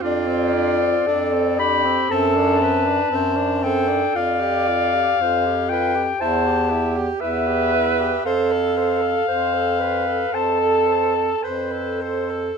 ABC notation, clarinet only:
X:1
M:4/4
L:1/16
Q:1/4=58
K:Flyd
V:1 name="Clarinet"
d6 b2 a6 g2 | f6 g2 a3 z e4 | f8 a4 c4 |]